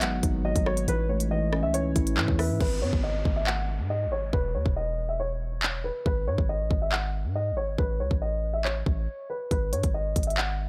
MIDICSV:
0, 0, Header, 1, 7, 480
1, 0, Start_track
1, 0, Tempo, 431655
1, 976, Time_signature, 4, 2, 24, 8
1, 11886, End_track
2, 0, Start_track
2, 0, Title_t, "Grand piano"
2, 0, Program_c, 0, 0
2, 21, Note_on_c, 0, 78, 85
2, 470, Note_off_c, 0, 78, 0
2, 498, Note_on_c, 0, 75, 88
2, 698, Note_off_c, 0, 75, 0
2, 737, Note_on_c, 0, 73, 88
2, 938, Note_off_c, 0, 73, 0
2, 982, Note_on_c, 0, 71, 94
2, 1181, Note_off_c, 0, 71, 0
2, 1216, Note_on_c, 0, 73, 72
2, 1417, Note_off_c, 0, 73, 0
2, 1457, Note_on_c, 0, 75, 85
2, 1795, Note_off_c, 0, 75, 0
2, 1809, Note_on_c, 0, 76, 76
2, 1913, Note_off_c, 0, 76, 0
2, 1934, Note_on_c, 0, 73, 85
2, 2612, Note_off_c, 0, 73, 0
2, 2656, Note_on_c, 0, 71, 78
2, 2857, Note_off_c, 0, 71, 0
2, 2898, Note_on_c, 0, 71, 87
2, 3098, Note_off_c, 0, 71, 0
2, 3136, Note_on_c, 0, 73, 80
2, 3337, Note_off_c, 0, 73, 0
2, 3376, Note_on_c, 0, 75, 80
2, 3715, Note_off_c, 0, 75, 0
2, 3740, Note_on_c, 0, 76, 78
2, 3839, Note_off_c, 0, 76, 0
2, 3858, Note_on_c, 0, 78, 87
2, 4309, Note_off_c, 0, 78, 0
2, 4338, Note_on_c, 0, 75, 88
2, 4538, Note_off_c, 0, 75, 0
2, 4580, Note_on_c, 0, 73, 89
2, 4779, Note_off_c, 0, 73, 0
2, 4817, Note_on_c, 0, 71, 100
2, 5018, Note_off_c, 0, 71, 0
2, 5056, Note_on_c, 0, 73, 78
2, 5257, Note_off_c, 0, 73, 0
2, 5299, Note_on_c, 0, 75, 91
2, 5636, Note_off_c, 0, 75, 0
2, 5657, Note_on_c, 0, 76, 80
2, 5757, Note_off_c, 0, 76, 0
2, 5779, Note_on_c, 0, 73, 77
2, 6455, Note_off_c, 0, 73, 0
2, 6496, Note_on_c, 0, 71, 72
2, 6697, Note_off_c, 0, 71, 0
2, 6739, Note_on_c, 0, 71, 96
2, 6939, Note_off_c, 0, 71, 0
2, 6979, Note_on_c, 0, 73, 87
2, 7179, Note_off_c, 0, 73, 0
2, 7219, Note_on_c, 0, 75, 85
2, 7556, Note_off_c, 0, 75, 0
2, 7581, Note_on_c, 0, 76, 79
2, 7680, Note_off_c, 0, 76, 0
2, 7700, Note_on_c, 0, 78, 83
2, 8150, Note_off_c, 0, 78, 0
2, 8178, Note_on_c, 0, 75, 88
2, 8378, Note_off_c, 0, 75, 0
2, 8416, Note_on_c, 0, 73, 83
2, 8617, Note_off_c, 0, 73, 0
2, 8659, Note_on_c, 0, 71, 91
2, 8859, Note_off_c, 0, 71, 0
2, 8897, Note_on_c, 0, 73, 76
2, 9097, Note_off_c, 0, 73, 0
2, 9137, Note_on_c, 0, 75, 84
2, 9475, Note_off_c, 0, 75, 0
2, 9490, Note_on_c, 0, 76, 75
2, 9593, Note_off_c, 0, 76, 0
2, 9616, Note_on_c, 0, 73, 82
2, 10293, Note_off_c, 0, 73, 0
2, 10338, Note_on_c, 0, 71, 75
2, 10538, Note_off_c, 0, 71, 0
2, 10579, Note_on_c, 0, 71, 88
2, 10779, Note_off_c, 0, 71, 0
2, 10816, Note_on_c, 0, 73, 84
2, 11017, Note_off_c, 0, 73, 0
2, 11057, Note_on_c, 0, 75, 80
2, 11395, Note_off_c, 0, 75, 0
2, 11421, Note_on_c, 0, 76, 79
2, 11520, Note_off_c, 0, 76, 0
2, 11539, Note_on_c, 0, 78, 88
2, 11886, Note_off_c, 0, 78, 0
2, 11886, End_track
3, 0, Start_track
3, 0, Title_t, "Ambient pad"
3, 0, Program_c, 1, 92
3, 0, Note_on_c, 1, 56, 85
3, 0, Note_on_c, 1, 63, 77
3, 0, Note_on_c, 1, 66, 78
3, 0, Note_on_c, 1, 71, 97
3, 933, Note_off_c, 1, 56, 0
3, 933, Note_off_c, 1, 71, 0
3, 958, Note_off_c, 1, 66, 0
3, 959, Note_off_c, 1, 63, 0
3, 978, Note_on_c, 1, 57, 85
3, 978, Note_on_c, 1, 61, 80
3, 978, Note_on_c, 1, 64, 79
3, 979, Note_on_c, 1, 73, 94
3, 2878, Note_off_c, 1, 57, 0
3, 2878, Note_off_c, 1, 61, 0
3, 2878, Note_off_c, 1, 64, 0
3, 2879, Note_off_c, 1, 73, 0
3, 11886, End_track
4, 0, Start_track
4, 0, Title_t, "Tine electric piano"
4, 0, Program_c, 2, 4
4, 0, Control_c, 2, 64, 127
4, 0, Note_on_c, 2, 54, 77
4, 0, Note_on_c, 2, 56, 76
4, 0, Note_on_c, 2, 59, 99
4, 16, Note_off_c, 2, 54, 0
4, 16, Note_on_c, 2, 54, 74
4, 255, Note_on_c, 2, 63, 87
4, 482, Note_off_c, 2, 54, 0
4, 495, Note_on_c, 2, 54, 96
4, 497, Note_off_c, 2, 56, 0
4, 737, Note_on_c, 2, 66, 84
4, 972, Note_on_c, 2, 52, 88
4, 976, Note_off_c, 2, 54, 0
4, 976, Note_off_c, 2, 63, 0
4, 977, Note_off_c, 2, 66, 0
4, 978, Note_off_c, 2, 59, 0
4, 989, Control_c, 2, 64, 0
4, 1176, Control_c, 2, 64, 127
4, 1218, Note_on_c, 2, 57, 79
4, 1449, Note_off_c, 2, 52, 0
4, 1463, Note_on_c, 2, 52, 78
4, 1693, Note_on_c, 2, 61, 100
4, 1918, Note_off_c, 2, 52, 0
4, 1931, Note_on_c, 2, 52, 71
4, 2173, Note_on_c, 2, 64, 81
4, 2397, Note_off_c, 2, 52, 0
4, 2411, Note_on_c, 2, 52, 97
4, 2417, Note_off_c, 2, 57, 0
4, 2656, Note_on_c, 2, 76, 88
4, 2894, Note_off_c, 2, 52, 0
4, 2895, Note_off_c, 2, 61, 0
4, 2895, Note_off_c, 2, 64, 0
4, 2896, Note_off_c, 2, 76, 0
4, 2910, Control_c, 2, 64, 0
4, 11886, End_track
5, 0, Start_track
5, 0, Title_t, "808-style bass"
5, 0, Program_c, 3, 38
5, 0, Note_on_c, 3, 32, 97
5, 241, Note_off_c, 3, 32, 0
5, 258, Note_on_c, 3, 32, 111
5, 603, Note_off_c, 3, 32, 0
5, 619, Note_on_c, 3, 32, 100
5, 963, Note_off_c, 3, 32, 0
5, 977, Note_on_c, 3, 33, 107
5, 1817, Note_on_c, 3, 37, 93
5, 1834, Note_off_c, 3, 33, 0
5, 2159, Note_off_c, 3, 37, 0
5, 2178, Note_on_c, 3, 33, 109
5, 2417, Note_on_c, 3, 45, 101
5, 2434, Note_off_c, 3, 33, 0
5, 2531, Note_off_c, 3, 45, 0
5, 2538, Note_on_c, 3, 40, 104
5, 2778, Note_on_c, 3, 45, 99
5, 2795, Note_off_c, 3, 40, 0
5, 2891, Note_off_c, 3, 45, 0
5, 2897, Note_on_c, 3, 32, 106
5, 3138, Note_on_c, 3, 44, 96
5, 3154, Note_off_c, 3, 32, 0
5, 3251, Note_off_c, 3, 44, 0
5, 3257, Note_on_c, 3, 32, 99
5, 3603, Note_off_c, 3, 32, 0
5, 3617, Note_on_c, 3, 32, 108
5, 4217, Note_on_c, 3, 44, 102
5, 4234, Note_off_c, 3, 32, 0
5, 4517, Note_on_c, 3, 32, 93
5, 4534, Note_off_c, 3, 44, 0
5, 4802, Note_off_c, 3, 32, 0
5, 4817, Note_on_c, 3, 28, 107
5, 5056, Note_on_c, 3, 40, 104
5, 5073, Note_off_c, 3, 28, 0
5, 5171, Note_off_c, 3, 40, 0
5, 5178, Note_on_c, 3, 28, 100
5, 6573, Note_off_c, 3, 28, 0
5, 6737, Note_on_c, 3, 32, 105
5, 6977, Note_on_c, 3, 44, 104
5, 6994, Note_off_c, 3, 32, 0
5, 7091, Note_off_c, 3, 44, 0
5, 7098, Note_on_c, 3, 32, 105
5, 7336, Note_on_c, 3, 33, 101
5, 7353, Note_off_c, 3, 32, 0
5, 7450, Note_off_c, 3, 33, 0
5, 7457, Note_on_c, 3, 32, 103
5, 8057, Note_on_c, 3, 44, 105
5, 8074, Note_off_c, 3, 32, 0
5, 8357, Note_on_c, 3, 32, 96
5, 8374, Note_off_c, 3, 44, 0
5, 8642, Note_off_c, 3, 32, 0
5, 8656, Note_on_c, 3, 33, 107
5, 8896, Note_on_c, 3, 37, 96
5, 8913, Note_off_c, 3, 33, 0
5, 9010, Note_off_c, 3, 37, 0
5, 9017, Note_on_c, 3, 33, 101
5, 9823, Note_off_c, 3, 33, 0
5, 9856, Note_on_c, 3, 33, 107
5, 10096, Note_off_c, 3, 33, 0
5, 10577, Note_on_c, 3, 32, 107
5, 10817, Note_on_c, 3, 44, 99
5, 10833, Note_off_c, 3, 32, 0
5, 10931, Note_off_c, 3, 44, 0
5, 10937, Note_on_c, 3, 32, 100
5, 11283, Note_off_c, 3, 32, 0
5, 11298, Note_on_c, 3, 32, 106
5, 11886, Note_off_c, 3, 32, 0
5, 11886, End_track
6, 0, Start_track
6, 0, Title_t, "Downlifter"
6, 0, Program_c, 4, 103
6, 2897, Note_on_c, 4, 60, 81
6, 6737, Note_off_c, 4, 60, 0
6, 11886, End_track
7, 0, Start_track
7, 0, Title_t, "Drums"
7, 16, Note_on_c, 9, 42, 73
7, 18, Note_on_c, 9, 39, 127
7, 127, Note_off_c, 9, 42, 0
7, 129, Note_off_c, 9, 39, 0
7, 257, Note_on_c, 9, 42, 94
7, 258, Note_on_c, 9, 36, 105
7, 368, Note_off_c, 9, 42, 0
7, 369, Note_off_c, 9, 36, 0
7, 618, Note_on_c, 9, 36, 103
7, 618, Note_on_c, 9, 42, 83
7, 729, Note_off_c, 9, 36, 0
7, 729, Note_off_c, 9, 42, 0
7, 738, Note_on_c, 9, 37, 103
7, 849, Note_off_c, 9, 37, 0
7, 857, Note_on_c, 9, 42, 77
7, 969, Note_off_c, 9, 42, 0
7, 978, Note_on_c, 9, 42, 72
7, 1089, Note_off_c, 9, 42, 0
7, 1336, Note_on_c, 9, 42, 76
7, 1448, Note_off_c, 9, 42, 0
7, 1697, Note_on_c, 9, 37, 98
7, 1808, Note_off_c, 9, 37, 0
7, 1935, Note_on_c, 9, 42, 81
7, 2047, Note_off_c, 9, 42, 0
7, 2176, Note_on_c, 9, 42, 91
7, 2177, Note_on_c, 9, 36, 99
7, 2287, Note_off_c, 9, 42, 0
7, 2289, Note_off_c, 9, 36, 0
7, 2300, Note_on_c, 9, 42, 88
7, 2411, Note_off_c, 9, 42, 0
7, 2417, Note_on_c, 9, 39, 123
7, 2528, Note_off_c, 9, 39, 0
7, 2538, Note_on_c, 9, 36, 99
7, 2649, Note_off_c, 9, 36, 0
7, 2657, Note_on_c, 9, 37, 100
7, 2657, Note_on_c, 9, 46, 68
7, 2768, Note_off_c, 9, 46, 0
7, 2769, Note_off_c, 9, 37, 0
7, 2897, Note_on_c, 9, 36, 117
7, 2897, Note_on_c, 9, 49, 90
7, 3008, Note_off_c, 9, 36, 0
7, 3008, Note_off_c, 9, 49, 0
7, 3258, Note_on_c, 9, 36, 97
7, 3369, Note_off_c, 9, 36, 0
7, 3618, Note_on_c, 9, 36, 100
7, 3729, Note_off_c, 9, 36, 0
7, 3858, Note_on_c, 9, 39, 126
7, 3969, Note_off_c, 9, 39, 0
7, 4817, Note_on_c, 9, 36, 121
7, 4928, Note_off_c, 9, 36, 0
7, 5178, Note_on_c, 9, 36, 93
7, 5289, Note_off_c, 9, 36, 0
7, 6257, Note_on_c, 9, 39, 118
7, 6368, Note_off_c, 9, 39, 0
7, 6737, Note_on_c, 9, 36, 121
7, 6848, Note_off_c, 9, 36, 0
7, 7098, Note_on_c, 9, 36, 93
7, 7209, Note_off_c, 9, 36, 0
7, 7457, Note_on_c, 9, 36, 96
7, 7568, Note_off_c, 9, 36, 0
7, 7697, Note_on_c, 9, 39, 124
7, 7808, Note_off_c, 9, 39, 0
7, 8656, Note_on_c, 9, 36, 119
7, 8767, Note_off_c, 9, 36, 0
7, 9017, Note_on_c, 9, 36, 94
7, 9128, Note_off_c, 9, 36, 0
7, 9617, Note_on_c, 9, 39, 74
7, 9728, Note_off_c, 9, 39, 0
7, 9856, Note_on_c, 9, 36, 100
7, 9967, Note_off_c, 9, 36, 0
7, 10577, Note_on_c, 9, 36, 116
7, 10577, Note_on_c, 9, 42, 69
7, 10688, Note_off_c, 9, 36, 0
7, 10688, Note_off_c, 9, 42, 0
7, 10817, Note_on_c, 9, 42, 77
7, 10929, Note_off_c, 9, 42, 0
7, 10936, Note_on_c, 9, 42, 72
7, 10938, Note_on_c, 9, 36, 98
7, 11047, Note_off_c, 9, 42, 0
7, 11049, Note_off_c, 9, 36, 0
7, 11297, Note_on_c, 9, 42, 79
7, 11298, Note_on_c, 9, 36, 98
7, 11377, Note_off_c, 9, 42, 0
7, 11377, Note_on_c, 9, 42, 65
7, 11409, Note_off_c, 9, 36, 0
7, 11457, Note_off_c, 9, 42, 0
7, 11457, Note_on_c, 9, 42, 47
7, 11538, Note_on_c, 9, 39, 124
7, 11569, Note_off_c, 9, 42, 0
7, 11649, Note_off_c, 9, 39, 0
7, 11886, End_track
0, 0, End_of_file